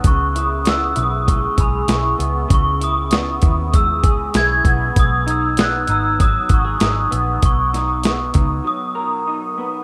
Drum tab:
HH |xxxxxxxx|xxxxxxxx|xxxxxxxx|xxxx----|
SD |--o---o-|--o---o-|--o---o-|-oo-----|
BD |o---oo--|o--ooo-o|o---oo--|o--o----|